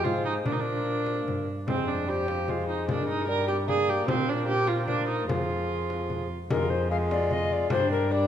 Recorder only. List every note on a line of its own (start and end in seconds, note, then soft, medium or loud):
0.04 0.47 C5 medium
0.45 1.47 A#4 medium
1.68 2.05 C5 medium
2.08 2.88 C5 medium
2.88 3.30 A#4 medium
2.88 2.93 C5 soft
3.29 3.67 D5 medium
3.68 4.07 D5 medium
4.08 4.14 C5 medium
4.13 4.84 A#4 medium
4.87 5.27 A#4 medium
5.27 6.28 G#4 medium
6.51 6.72 A#4 loud
6.70 6.90 C5 medium
6.91 6.97 F5 loud
7.11 7.34 D5 loud
7.33 7.54 D#5 loud
7.53 7.71 D5 loud
7.71 7.91 C5 loud
7.91 8.13 A#4 loud
8.12 8.27 D5 loud